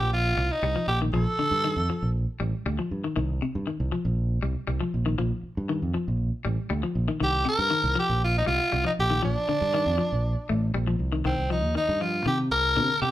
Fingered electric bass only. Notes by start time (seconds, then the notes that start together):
0.00 A#1
0.37 C2
0.63 C2
0.88 A#1
1.13 A#1
1.39 muted fingered electric bass stroke
1.51 G2
1.76 F2
1.90 muted fingered electric bass stroke
2.02 A#1
2.40 A1
2.66 D2
2.91 G2
3.17 C2
3.55 G2
3.80 C2
4.05 A#1
4.43 C2
4.68 C2
4.94 A#1
5.19 A#1
5.43 muted fingered electric bass stroke
5.57 G2
5.82 F2
5.95 muted fingered electric bass stroke
6.08 A#1
6.45 A1
6.71 D2
6.95 A#1
7.21 C2
7.59 G2
7.84 C2
8.09 A#1
8.47 C2
8.73 C2
8.99 A#1
9.24 A#1
9.48 muted fingered electric bass stroke
9.61 G2
9.86 F2
9.99 muted fingered electric bass stroke
10.12 A#1
10.50 A1
10.75 A#1
10.99 C2
11.26 C2
11.38 C2
11.64 D#2
11.89 G2
12.26 C3
12.51 C2
12.76 C3
13.02 C3